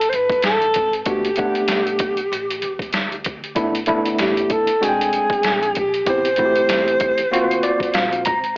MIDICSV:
0, 0, Header, 1, 5, 480
1, 0, Start_track
1, 0, Key_signature, 1, "major"
1, 0, Tempo, 625000
1, 819, Time_signature, 4, 2, 24, 8
1, 6583, End_track
2, 0, Start_track
2, 0, Title_t, "Alto saxophone"
2, 0, Program_c, 0, 65
2, 0, Note_on_c, 0, 69, 95
2, 71, Note_on_c, 0, 72, 69
2, 83, Note_off_c, 0, 69, 0
2, 113, Note_on_c, 0, 71, 97
2, 124, Note_off_c, 0, 72, 0
2, 342, Note_off_c, 0, 71, 0
2, 346, Note_on_c, 0, 69, 98
2, 792, Note_off_c, 0, 69, 0
2, 838, Note_on_c, 0, 67, 77
2, 2237, Note_off_c, 0, 67, 0
2, 3230, Note_on_c, 0, 67, 72
2, 3472, Note_on_c, 0, 69, 76
2, 3484, Note_off_c, 0, 67, 0
2, 3715, Note_on_c, 0, 68, 85
2, 3726, Note_off_c, 0, 69, 0
2, 4427, Note_off_c, 0, 68, 0
2, 4442, Note_on_c, 0, 67, 83
2, 4654, Note_off_c, 0, 67, 0
2, 4682, Note_on_c, 0, 72, 101
2, 6080, Note_off_c, 0, 72, 0
2, 6583, End_track
3, 0, Start_track
3, 0, Title_t, "Tine electric piano"
3, 0, Program_c, 1, 4
3, 814, Note_on_c, 1, 57, 64
3, 816, Note_on_c, 1, 59, 59
3, 818, Note_on_c, 1, 62, 58
3, 822, Note_on_c, 1, 66, 72
3, 983, Note_off_c, 1, 57, 0
3, 984, Note_off_c, 1, 59, 0
3, 985, Note_off_c, 1, 62, 0
3, 987, Note_off_c, 1, 66, 0
3, 1055, Note_on_c, 1, 57, 73
3, 1060, Note_on_c, 1, 59, 70
3, 1062, Note_on_c, 1, 62, 67
3, 1065, Note_on_c, 1, 78, 77
3, 1685, Note_off_c, 1, 57, 0
3, 1687, Note_off_c, 1, 59, 0
3, 1689, Note_off_c, 1, 62, 0
3, 1690, Note_off_c, 1, 78, 0
3, 2727, Note_on_c, 1, 57, 77
3, 2729, Note_on_c, 1, 59, 72
3, 2734, Note_on_c, 1, 62, 72
3, 2737, Note_on_c, 1, 64, 86
3, 2900, Note_off_c, 1, 57, 0
3, 2901, Note_off_c, 1, 59, 0
3, 2904, Note_off_c, 1, 62, 0
3, 2905, Note_off_c, 1, 64, 0
3, 2972, Note_on_c, 1, 57, 86
3, 2976, Note_on_c, 1, 58, 63
3, 2977, Note_on_c, 1, 62, 76
3, 2980, Note_on_c, 1, 64, 92
3, 3025, Note_on_c, 1, 59, 78
3, 3035, Note_off_c, 1, 58, 0
3, 3604, Note_off_c, 1, 57, 0
3, 3606, Note_off_c, 1, 62, 0
3, 3608, Note_off_c, 1, 64, 0
3, 3630, Note_off_c, 1, 59, 0
3, 3690, Note_on_c, 1, 56, 70
3, 3692, Note_on_c, 1, 60, 64
3, 3697, Note_on_c, 1, 62, 66
3, 3698, Note_on_c, 1, 66, 63
3, 3751, Note_on_c, 1, 79, 72
3, 3757, Note_off_c, 1, 66, 0
3, 4470, Note_off_c, 1, 56, 0
3, 4471, Note_off_c, 1, 60, 0
3, 4474, Note_off_c, 1, 62, 0
3, 4501, Note_off_c, 1, 79, 0
3, 4653, Note_on_c, 1, 59, 65
3, 4658, Note_on_c, 1, 60, 61
3, 4660, Note_on_c, 1, 64, 59
3, 4661, Note_on_c, 1, 67, 75
3, 4823, Note_off_c, 1, 59, 0
3, 4825, Note_off_c, 1, 60, 0
3, 4826, Note_off_c, 1, 64, 0
3, 4827, Note_off_c, 1, 67, 0
3, 4898, Note_on_c, 1, 57, 73
3, 4902, Note_on_c, 1, 60, 70
3, 4904, Note_on_c, 1, 64, 69
3, 4909, Note_on_c, 1, 66, 61
3, 4957, Note_on_c, 1, 67, 78
3, 4962, Note_off_c, 1, 66, 0
3, 5527, Note_off_c, 1, 57, 0
3, 5529, Note_off_c, 1, 60, 0
3, 5530, Note_off_c, 1, 64, 0
3, 5556, Note_off_c, 1, 67, 0
3, 5617, Note_on_c, 1, 58, 84
3, 5620, Note_on_c, 1, 60, 77
3, 5625, Note_on_c, 1, 65, 78
3, 5626, Note_on_c, 1, 66, 93
3, 5862, Note_on_c, 1, 74, 67
3, 6083, Note_off_c, 1, 74, 0
3, 6098, Note_on_c, 1, 77, 65
3, 6322, Note_off_c, 1, 77, 0
3, 6340, Note_on_c, 1, 82, 70
3, 6394, Note_off_c, 1, 58, 0
3, 6395, Note_off_c, 1, 60, 0
3, 6398, Note_off_c, 1, 65, 0
3, 6398, Note_off_c, 1, 66, 0
3, 6563, Note_off_c, 1, 82, 0
3, 6583, End_track
4, 0, Start_track
4, 0, Title_t, "Upright bass"
4, 0, Program_c, 2, 32
4, 0, Note_on_c, 2, 30, 96
4, 88, Note_off_c, 2, 30, 0
4, 103, Note_on_c, 2, 31, 82
4, 329, Note_off_c, 2, 31, 0
4, 344, Note_on_c, 2, 33, 86
4, 569, Note_off_c, 2, 33, 0
4, 586, Note_on_c, 2, 32, 86
4, 810, Note_off_c, 2, 32, 0
4, 817, Note_on_c, 2, 31, 92
4, 1274, Note_off_c, 2, 31, 0
4, 1301, Note_on_c, 2, 35, 80
4, 1756, Note_off_c, 2, 35, 0
4, 1779, Note_on_c, 2, 33, 94
4, 2007, Note_off_c, 2, 33, 0
4, 2020, Note_on_c, 2, 40, 85
4, 2247, Note_off_c, 2, 40, 0
4, 2259, Note_on_c, 2, 38, 76
4, 2715, Note_off_c, 2, 38, 0
4, 2737, Note_on_c, 2, 31, 96
4, 3193, Note_off_c, 2, 31, 0
4, 3219, Note_on_c, 2, 33, 88
4, 3447, Note_off_c, 2, 33, 0
4, 3458, Note_on_c, 2, 30, 80
4, 3686, Note_off_c, 2, 30, 0
4, 3703, Note_on_c, 2, 28, 95
4, 3929, Note_off_c, 2, 28, 0
4, 3939, Note_on_c, 2, 36, 74
4, 4167, Note_off_c, 2, 36, 0
4, 4178, Note_on_c, 2, 34, 81
4, 4406, Note_off_c, 2, 34, 0
4, 4431, Note_on_c, 2, 34, 88
4, 4653, Note_off_c, 2, 34, 0
4, 4661, Note_on_c, 2, 33, 93
4, 5116, Note_off_c, 2, 33, 0
4, 5142, Note_on_c, 2, 40, 91
4, 5596, Note_off_c, 2, 40, 0
4, 5620, Note_on_c, 2, 38, 102
4, 5847, Note_off_c, 2, 38, 0
4, 5864, Note_on_c, 2, 36, 75
4, 6089, Note_off_c, 2, 36, 0
4, 6104, Note_on_c, 2, 34, 96
4, 6329, Note_off_c, 2, 34, 0
4, 6351, Note_on_c, 2, 32, 84
4, 6573, Note_off_c, 2, 32, 0
4, 6583, End_track
5, 0, Start_track
5, 0, Title_t, "Drums"
5, 8, Note_on_c, 9, 42, 51
5, 85, Note_off_c, 9, 42, 0
5, 96, Note_on_c, 9, 42, 64
5, 173, Note_off_c, 9, 42, 0
5, 226, Note_on_c, 9, 36, 86
5, 245, Note_on_c, 9, 42, 44
5, 303, Note_off_c, 9, 36, 0
5, 322, Note_off_c, 9, 42, 0
5, 326, Note_on_c, 9, 42, 83
5, 336, Note_on_c, 9, 38, 93
5, 403, Note_off_c, 9, 42, 0
5, 412, Note_off_c, 9, 38, 0
5, 475, Note_on_c, 9, 42, 40
5, 552, Note_off_c, 9, 42, 0
5, 569, Note_on_c, 9, 42, 70
5, 585, Note_on_c, 9, 36, 84
5, 646, Note_off_c, 9, 42, 0
5, 662, Note_off_c, 9, 36, 0
5, 717, Note_on_c, 9, 42, 46
5, 794, Note_off_c, 9, 42, 0
5, 811, Note_on_c, 9, 42, 84
5, 817, Note_on_c, 9, 36, 103
5, 888, Note_off_c, 9, 42, 0
5, 894, Note_off_c, 9, 36, 0
5, 958, Note_on_c, 9, 42, 57
5, 1034, Note_off_c, 9, 42, 0
5, 1042, Note_on_c, 9, 42, 61
5, 1067, Note_on_c, 9, 36, 86
5, 1119, Note_off_c, 9, 42, 0
5, 1144, Note_off_c, 9, 36, 0
5, 1191, Note_on_c, 9, 42, 54
5, 1268, Note_off_c, 9, 42, 0
5, 1288, Note_on_c, 9, 42, 83
5, 1294, Note_on_c, 9, 38, 101
5, 1365, Note_off_c, 9, 42, 0
5, 1371, Note_off_c, 9, 38, 0
5, 1434, Note_on_c, 9, 42, 45
5, 1511, Note_off_c, 9, 42, 0
5, 1527, Note_on_c, 9, 42, 82
5, 1536, Note_on_c, 9, 36, 91
5, 1604, Note_off_c, 9, 42, 0
5, 1612, Note_off_c, 9, 36, 0
5, 1667, Note_on_c, 9, 42, 54
5, 1744, Note_off_c, 9, 42, 0
5, 1787, Note_on_c, 9, 42, 85
5, 1864, Note_off_c, 9, 42, 0
5, 1924, Note_on_c, 9, 42, 53
5, 2000, Note_off_c, 9, 42, 0
5, 2012, Note_on_c, 9, 42, 64
5, 2089, Note_off_c, 9, 42, 0
5, 2145, Note_on_c, 9, 36, 83
5, 2164, Note_on_c, 9, 42, 44
5, 2222, Note_off_c, 9, 36, 0
5, 2241, Note_off_c, 9, 42, 0
5, 2247, Note_on_c, 9, 42, 75
5, 2256, Note_on_c, 9, 38, 96
5, 2324, Note_off_c, 9, 42, 0
5, 2333, Note_off_c, 9, 38, 0
5, 2398, Note_on_c, 9, 42, 41
5, 2474, Note_off_c, 9, 42, 0
5, 2492, Note_on_c, 9, 42, 69
5, 2506, Note_on_c, 9, 36, 84
5, 2569, Note_off_c, 9, 42, 0
5, 2583, Note_off_c, 9, 36, 0
5, 2640, Note_on_c, 9, 42, 46
5, 2717, Note_off_c, 9, 42, 0
5, 2733, Note_on_c, 9, 42, 81
5, 2737, Note_on_c, 9, 36, 104
5, 2810, Note_off_c, 9, 42, 0
5, 2814, Note_off_c, 9, 36, 0
5, 2880, Note_on_c, 9, 42, 55
5, 2956, Note_off_c, 9, 42, 0
5, 2966, Note_on_c, 9, 42, 63
5, 2988, Note_on_c, 9, 36, 84
5, 3042, Note_off_c, 9, 42, 0
5, 3065, Note_off_c, 9, 36, 0
5, 3114, Note_on_c, 9, 42, 56
5, 3191, Note_off_c, 9, 42, 0
5, 3213, Note_on_c, 9, 42, 86
5, 3220, Note_on_c, 9, 38, 100
5, 3290, Note_off_c, 9, 42, 0
5, 3296, Note_off_c, 9, 38, 0
5, 3356, Note_on_c, 9, 42, 46
5, 3433, Note_off_c, 9, 42, 0
5, 3453, Note_on_c, 9, 42, 78
5, 3457, Note_on_c, 9, 36, 90
5, 3529, Note_off_c, 9, 42, 0
5, 3534, Note_off_c, 9, 36, 0
5, 3587, Note_on_c, 9, 42, 55
5, 3664, Note_off_c, 9, 42, 0
5, 3706, Note_on_c, 9, 42, 88
5, 3783, Note_off_c, 9, 42, 0
5, 3848, Note_on_c, 9, 42, 55
5, 3925, Note_off_c, 9, 42, 0
5, 3938, Note_on_c, 9, 42, 61
5, 4014, Note_off_c, 9, 42, 0
5, 4068, Note_on_c, 9, 36, 85
5, 4090, Note_on_c, 9, 42, 45
5, 4145, Note_off_c, 9, 36, 0
5, 4167, Note_off_c, 9, 42, 0
5, 4171, Note_on_c, 9, 42, 81
5, 4181, Note_on_c, 9, 38, 89
5, 4248, Note_off_c, 9, 42, 0
5, 4258, Note_off_c, 9, 38, 0
5, 4321, Note_on_c, 9, 42, 42
5, 4397, Note_off_c, 9, 42, 0
5, 4417, Note_on_c, 9, 42, 72
5, 4428, Note_on_c, 9, 36, 84
5, 4494, Note_off_c, 9, 42, 0
5, 4505, Note_off_c, 9, 36, 0
5, 4560, Note_on_c, 9, 42, 44
5, 4637, Note_off_c, 9, 42, 0
5, 4658, Note_on_c, 9, 42, 87
5, 4660, Note_on_c, 9, 36, 98
5, 4735, Note_off_c, 9, 42, 0
5, 4737, Note_off_c, 9, 36, 0
5, 4800, Note_on_c, 9, 42, 54
5, 4877, Note_off_c, 9, 42, 0
5, 4887, Note_on_c, 9, 42, 61
5, 4910, Note_on_c, 9, 36, 82
5, 4964, Note_off_c, 9, 42, 0
5, 4987, Note_off_c, 9, 36, 0
5, 5035, Note_on_c, 9, 42, 54
5, 5112, Note_off_c, 9, 42, 0
5, 5137, Note_on_c, 9, 42, 83
5, 5143, Note_on_c, 9, 38, 103
5, 5214, Note_off_c, 9, 42, 0
5, 5220, Note_off_c, 9, 38, 0
5, 5281, Note_on_c, 9, 42, 48
5, 5358, Note_off_c, 9, 42, 0
5, 5375, Note_on_c, 9, 42, 80
5, 5381, Note_on_c, 9, 36, 92
5, 5452, Note_off_c, 9, 42, 0
5, 5457, Note_off_c, 9, 36, 0
5, 5511, Note_on_c, 9, 42, 52
5, 5588, Note_off_c, 9, 42, 0
5, 5633, Note_on_c, 9, 42, 82
5, 5710, Note_off_c, 9, 42, 0
5, 5767, Note_on_c, 9, 42, 52
5, 5844, Note_off_c, 9, 42, 0
5, 5859, Note_on_c, 9, 42, 64
5, 5936, Note_off_c, 9, 42, 0
5, 5989, Note_on_c, 9, 36, 83
5, 6009, Note_on_c, 9, 42, 49
5, 6066, Note_off_c, 9, 36, 0
5, 6086, Note_off_c, 9, 42, 0
5, 6093, Note_on_c, 9, 42, 77
5, 6103, Note_on_c, 9, 38, 96
5, 6170, Note_off_c, 9, 42, 0
5, 6180, Note_off_c, 9, 38, 0
5, 6239, Note_on_c, 9, 42, 44
5, 6316, Note_off_c, 9, 42, 0
5, 6335, Note_on_c, 9, 42, 71
5, 6349, Note_on_c, 9, 36, 86
5, 6412, Note_off_c, 9, 42, 0
5, 6426, Note_off_c, 9, 36, 0
5, 6479, Note_on_c, 9, 42, 43
5, 6556, Note_off_c, 9, 42, 0
5, 6583, End_track
0, 0, End_of_file